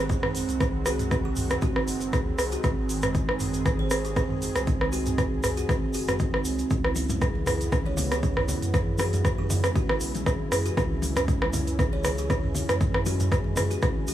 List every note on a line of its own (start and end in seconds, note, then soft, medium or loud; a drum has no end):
0.00 0.42 G#1 loud
0.00 6.67 D#3 medium
0.00 6.66 F#3 medium
0.00 6.66 G#3 medium
0.00 6.66 C4 medium
0.00 2.60 F#4 medium
0.09 0.19 G#4 medium
0.09 kick loud
0.09 closed hi-hat soft
0.09 shaker soft
0.23 0.30 D#4 medium
0.23 cross-stick medium
0.23 mid tom medium
0.35 0.42 C4 medium
0.35 open hi-hat medium
0.35 shaker medium
0.48 1.57 C2 loud
0.48 0.59 C4 medium
0.48 closed hi-hat medium
0.48 shaker medium
0.60 0.68 G#4 medium
0.60 kick loud
0.60 cross-stick medium
0.60 closed hi-hat soft
0.60 shaker soft
0.86 1.09 F#4 medium
0.86 0.99 G#4 loud
0.86 cross-stick medium
0.86 open hi-hat medium
0.86 shaker medium
0.99 closed hi-hat medium
0.99 mid tom medium
0.99 shaker soft
1.11 1.24 C4 loud
1.11 kick loud
1.11 cross-stick medium
1.11 closed hi-hat soft
1.11 shaker soft
1.25 1.36 C4 medium
1.25 1.48 G#4 medium
1.36 1.49 F#4 medium
1.36 mid tom medium
1.36 open hi-hat medium
1.36 shaker medium
1.50 1.61 G#3 medium
1.50 cross-stick medium
1.50 closed hi-hat medium
1.50 shaker soft
1.61 1.75 C4 medium
1.61 1.85 F#4 medium
1.61 kick loud
1.61 closed hi-hat soft
1.61 shaker soft
1.76 1.82 D#4 medium
1.76 cross-stick medium
1.87 2.15 F#1 medium
1.87 1.95 C4 medium
1.87 open hi-hat medium
1.87 shaker medium
2.00 2.12 C4 medium
2.00 closed hi-hat medium
2.00 shaker medium
2.13 2.32 D#2 medium
2.13 2.20 G#4 medium
2.13 kick loud
2.13 cross-stick medium
2.13 closed hi-hat soft
2.13 shaker soft
2.38 2.57 C2 loud
2.38 2.51 G#4 loud
2.38 cross-stick medium
2.38 open hi-hat medium
2.38 shaker medium
2.52 3.03 F#4 medium
2.52 closed hi-hat medium
2.52 shaker medium
2.63 4.49 G#1 loud
2.63 2.76 C4 loud
2.63 6.67 G#4 medium
2.63 kick loud
2.63 cross-stick medium
2.63 closed hi-hat soft
2.63 shaker soft
2.77 2.89 C4 medium
2.89 3.02 F#4 medium
2.89 open hi-hat medium
2.89 shaker medium
3.02 3.13 G#3 medium
3.02 cross-stick medium
3.02 closed hi-hat medium
3.02 mid tom medium
3.02 shaker soft
3.15 kick loud
3.15 closed hi-hat soft
3.15 shaker soft
3.28 3.35 D#4 medium
3.28 cross-stick medium
3.40 3.47 C4 medium
3.40 mid tom loud
3.40 open hi-hat medium
3.40 shaker medium
3.54 3.64 C4 medium
3.54 closed hi-hat medium
3.54 shaker soft
3.66 3.73 G#4 medium
3.66 kick loud
3.66 cross-stick medium
3.66 closed hi-hat soft
3.66 shaker soft
3.79 3.87 C5 medium
3.90 4.04 G#4 loud
3.90 4.00 C5 medium
3.90 cross-stick medium
3.90 open hi-hat medium
3.90 shaker medium
4.05 4.12 G#4 medium
4.05 closed hi-hat medium
4.05 shaker soft
4.16 4.29 C4 loud
4.16 4.25 G#4 medium
4.16 kick loud
4.16 cross-stick medium
4.16 closed hi-hat soft
4.16 shaker soft
4.30 4.41 C4 medium
4.30 mid tom loud
4.42 4.54 F#4 medium
4.42 open hi-hat medium
4.42 shaker medium
4.56 5.63 C2 loud
4.56 4.66 G#3 medium
4.56 cross-stick medium
4.56 closed hi-hat medium
4.56 shaker soft
4.67 4.80 C4 medium
4.67 kick loud
4.67 closed hi-hat soft
4.67 shaker soft
4.81 4.87 D#4 medium
4.81 cross-stick medium
4.92 5.00 C4 medium
4.92 5.15 F#4 medium
4.92 open hi-hat medium
4.92 shaker medium
5.06 5.17 C4 medium
5.06 closed hi-hat medium
5.06 mid tom medium
5.06 shaker medium
5.18 5.26 G#4 medium
5.18 kick loud
5.18 cross-stick medium
5.18 closed hi-hat soft
5.18 shaker soft
5.43 5.56 G#4 loud
5.43 cross-stick medium
5.43 mid tom medium
5.43 open hi-hat medium
5.43 shaker loud
5.57 5.80 F#4 medium
5.57 closed hi-hat medium
5.57 shaker medium
5.69 5.81 C4 loud
5.69 kick loud
5.69 cross-stick medium
5.69 closed hi-hat soft
5.69 shaker soft
5.83 5.94 C4 medium
5.94 6.40 F#1 loud
5.94 6.03 F#4 medium
5.94 6.07 F#4 medium
5.94 open hi-hat medium
5.94 shaker medium
6.08 6.19 G#3 medium
6.08 6.16 F#4 medium
6.08 cross-stick medium
6.08 closed hi-hat medium
6.08 mid tom medium
6.08 shaker soft
6.19 6.33 C4 medium
6.19 kick loud
6.19 closed hi-hat soft
6.19 shaker soft
6.34 6.40 D#4 medium
6.34 cross-stick medium
6.45 6.64 C2 loud
6.45 6.53 C4 medium
6.45 open hi-hat medium
6.45 shaker medium
6.59 6.70 C4 medium
6.59 closed hi-hat medium
6.59 shaker soft
6.71 8.56 C#2 loud
6.71 14.14 C#3 medium
6.71 14.14 E3 medium
6.71 14.14 G#3 medium
6.71 10.73 B3 medium
6.71 14.14 E4 loud
6.71 kick loud
6.71 closed hi-hat soft
6.71 shaker soft
6.84 6.91 E4 medium
6.84 cross-stick medium
6.96 7.04 C#4 medium
6.96 open hi-hat loud
6.96 high conga medium
6.96 shaker medium
7.09 7.20 C#4 medium
7.09 closed hi-hat medium
7.09 mid tom medium
7.09 high conga loud
7.09 shaker medium
7.21 7.29 G#4 medium
7.21 kick loud
7.21 cross-stick medium
7.21 closed hi-hat soft
7.21 shaker soft
7.35 high conga medium
7.46 7.60 G#4 loud
7.46 cross-stick medium
7.46 mid tom medium
7.46 open hi-hat medium
7.46 low conga medium
7.46 shaker medium
7.61 closed hi-hat medium
7.61 shaker medium
7.72 7.85 C#4 loud
7.72 kick loud
7.72 cross-stick medium
7.72 closed hi-hat soft
7.72 shaker soft
7.86 7.97 C#4 medium
7.86 7.94 C#5 medium
7.86 high conga medium
7.97 8.10 F#4 medium
7.97 8.06 C#5 medium
7.97 open hi-hat loud
7.97 low conga loud
7.97 shaker loud
8.11 8.22 G#3 medium
8.11 8.19 G#4 medium
8.11 cross-stick medium
8.11 closed hi-hat medium
8.11 shaker medium
8.23 8.36 C#4 medium
8.23 8.32 G#4 medium
8.23 kick loud
8.23 closed hi-hat soft
8.23 shaker soft
8.37 8.43 E4 medium
8.37 cross-stick medium
8.37 mid tom medium
8.48 8.56 C#4 medium
8.48 open hi-hat medium
8.48 low conga loud
8.48 shaker medium
8.62 9.70 F#2 loud
8.62 8.73 C#4 medium
8.62 closed hi-hat medium
8.62 shaker soft
8.74 8.81 G#4 medium
8.74 kick loud
8.74 cross-stick medium
8.74 closed hi-hat soft
8.74 shaker soft
8.98 9.22 F#4 medium
8.98 9.12 G#4 loud
8.98 cross-stick loud
8.98 open hi-hat medium
8.98 high conga medium
8.98 shaker loud
9.13 closed hi-hat medium
9.13 mid tom medium
9.13 high conga loud
9.13 shaker medium
9.25 9.37 C#4 loud
9.25 kick loud
9.25 cross-stick medium
9.25 closed hi-hat soft
9.25 shaker soft
9.38 9.50 C#4 medium
9.38 9.61 G#4 medium
9.38 high conga medium
9.50 9.63 F#4 medium
9.50 mid tom medium
9.50 open hi-hat medium
9.50 low conga loud
9.50 shaker loud
9.64 9.75 G#3 medium
9.64 cross-stick loud
9.64 closed hi-hat medium
9.64 shaker soft
9.76 9.89 C#4 medium
9.76 9.99 F#4 medium
9.76 kick loud
9.76 closed hi-hat soft
9.76 shaker soft
9.89 9.96 E4 medium
9.89 cross-stick loud
10.00 10.28 B1 medium
10.00 10.08 C#4 medium
10.00 open hi-hat loud
10.00 shaker loud
10.15 10.25 C#4 medium
10.15 closed hi-hat medium
10.15 high conga medium
10.15 shaker medium
10.26 10.45 G#1 medium
10.26 10.34 G#4 medium
10.26 kick loud
10.26 cross-stick medium
10.26 closed hi-hat soft
10.26 shaker soft
10.52 10.70 F#2 loud
10.52 10.65 G#4 loud
10.52 cross-stick loud
10.52 open hi-hat medium
10.52 shaker loud
10.66 11.16 F#4 medium
10.66 closed hi-hat medium
10.66 shaker medium
10.77 12.63 C#2 loud
10.77 14.14 C#4 medium
10.77 10.90 C#4 loud
10.77 kick loud
10.77 cross-stick medium
10.77 closed hi-hat soft
10.77 shaker soft
10.91 11.02 C#4 medium
11.02 11.15 F#4 medium
11.02 open hi-hat medium
11.02 high conga loud
11.02 shaker loud
11.16 11.27 G#3 medium
11.16 cross-stick loud
11.16 closed hi-hat medium
11.16 mid tom medium
11.16 high conga medium
11.16 shaker medium
11.28 11.41 C#4 medium
11.28 kick loud
11.28 closed hi-hat soft
11.28 shaker soft
11.41 11.48 E4 medium
11.41 cross-stick loud
11.41 high conga medium
11.53 11.61 C#4 medium
11.53 mid tom medium
11.53 open hi-hat medium
11.53 low conga loud
11.53 shaker loud
11.67 11.78 C#4 medium
11.67 closed hi-hat medium
11.67 shaker medium
11.79 11.87 G#4 medium
11.79 kick loud
11.79 cross-stick medium
11.79 closed hi-hat soft
11.79 shaker soft
11.93 12.00 C#5 medium
11.93 high conga medium
12.04 12.17 G#4 loud
12.04 12.13 C#5 medium
12.04 cross-stick loud
12.04 open hi-hat loud
12.04 low conga loud
12.04 shaker loud
12.18 12.26 G#4 medium
12.18 closed hi-hat medium
12.18 shaker medium
12.29 12.42 C#4 loud
12.29 12.39 G#4 medium
12.29 kick loud
12.29 cross-stick medium
12.29 closed hi-hat soft
12.29 shaker soft
12.43 12.55 C#4 medium
12.43 mid tom medium
12.55 12.68 F#4 medium
12.55 open hi-hat medium
12.55 low conga loud
12.55 shaker loud
12.69 13.77 F#2 loud
12.69 12.80 G#3 medium
12.69 cross-stick loud
12.69 closed hi-hat medium
12.69 shaker medium
12.81 12.94 C#4 medium
12.81 kick loud
12.81 closed hi-hat soft
12.81 shaker soft
12.94 13.01 E4 medium
12.94 cross-stick loud
13.06 13.14 C#4 medium
13.06 13.29 F#4 medium
13.06 open hi-hat medium
13.06 high conga loud
13.06 shaker loud
13.20 closed hi-hat medium
13.20 mid tom medium
13.20 high conga loud
13.20 shaker medium
13.31 13.39 G#4 medium
13.31 kick loud
13.31 cross-stick medium
13.31 closed hi-hat soft
13.31 shaker soft
13.44 high conga medium
13.56 13.70 G#4 loud
13.56 cross-stick medium
13.56 mid tom medium
13.56 open hi-hat medium
13.56 low conga medium
13.56 shaker loud
13.70 13.93 F#4 medium
13.70 closed hi-hat medium
13.70 shaker medium
13.82 13.95 C#4 loud
13.82 kick loud
13.82 cross-stick medium
13.82 closed hi-hat soft
13.82 shaker soft
13.96 14.07 C#4 medium
14.08 14.14 B1 loud
14.08 14.14 F#4 medium
14.08 open hi-hat medium
14.08 shaker medium